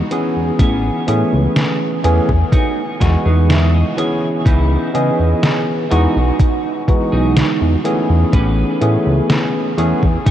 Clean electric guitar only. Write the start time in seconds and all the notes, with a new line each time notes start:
0.59 B3 C#4 G#4
2.04 muted clean electric guitar stroke
2.29 muted clean electric guitar stroke
2.52 D#4 F#4 G#4
3.00 G#5, muted clean electric guitar stroke
3.25 D#4 F#4 G#4
3.49 E5
3.74 D#5
3.98 C#5
4.45 D#4 E4 B4
5.91 D#4 F#4 G#4
6.88 muted clean electric guitar stroke
7.12 D#4 F#4 G#4
8.33 C#4 G#4 B4
9.79 muted clean electric guitar stroke
10.03 muted clean electric guitar stroke
10.26 D#4 F#4 G#4